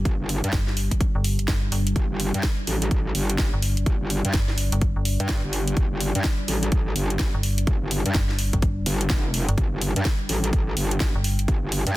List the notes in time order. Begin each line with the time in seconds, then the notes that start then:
Already playing: G3 D4 G4
0.05 G1, kick, closed hi-hat
0.20 G1
0.29 open hi-hat
0.44 G2, closed hi-hat
0.53 G1, kick, snare, closed hi-hat
0.67 snare
0.77 open hi-hat
0.91 kick, closed hi-hat
1.01 kick, closed hi-hat
1.15 G1
1.24 open hi-hat
1.39 closed hi-hat
1.48 G1, kick, snare, closed hi-hat
1.72 G1, open hi-hat
1.87 closed hi-hat
1.96 G1 D5, kick, closed hi-hat
2.11 G1
2.20 open hi-hat
2.34 G2, closed hi-hat
2.43 kick, snare, closed hi-hat
2.67 A1, open hi-hat
2.82 closed hi-hat
2.91 kick, closed hi-hat
3.15 G1, open hi-hat
3.30 closed hi-hat
3.38 G1, kick, snare, closed hi-hat
3.53 G1
3.62 open hi-hat
3.77 closed hi-hat
3.86 G1, kick, closed hi-hat
4.01 G1
4.10 open hi-hat
4.25 G2, closed hi-hat
4.34 G1, kick, snare, closed hi-hat
4.48 snare
4.58 open hi-hat
4.72 G1, closed hi-hat
4.82 kick, closed hi-hat
4.96 G1
5.05 open hi-hat
5.20 G2, closed hi-hat
5.29 kick, snare, closed hi-hat
5.44 G1
5.53 open hi-hat
5.68 closed hi-hat
5.77 G1, kick, closed hi-hat
5.91 G1
6.00 open hi-hat
6.15 G2, closed hi-hat
6.24 kick, snare, closed hi-hat
6.48 A1, open hi-hat
6.63 closed hi-hat
6.72 kick, closed hi-hat
6.96 G1, open hi-hat
7.10 closed hi-hat
7.19 G1, kick, snare, closed hi-hat
7.34 G1
7.43 open hi-hat
7.58 closed hi-hat
7.67 G1, kick, closed hi-hat
7.82 G1
7.91 open hi-hat
8.06 G2, closed hi-hat
8.15 G1, kick, snare, closed hi-hat
8.29 snare
8.39 open hi-hat
8.53 G1, kick, closed hi-hat
8.62 kick, closed hi-hat
8.86 G1, open hi-hat
9.01 closed hi-hat
9.10 F1, kick, snare, closed hi-hat
9.34 open hi-hat
9.48 G1, closed hi-hat
9.58 G1 G5, kick, closed hi-hat
9.72 G1
9.81 open hi-hat
9.96 G2, closed hi-hat
10.05 kick, snare, closed hi-hat
10.29 A1, open hi-hat
10.44 closed hi-hat
10.53 kick, closed hi-hat
10.77 G1, open hi-hat
10.91 closed hi-hat
11.00 G1, kick, snare, closed hi-hat
11.15 G1
11.24 open hi-hat
11.39 closed hi-hat
11.48 G1, kick, closed hi-hat
11.63 G1
11.72 open hi-hat
11.87 G2, closed hi-hat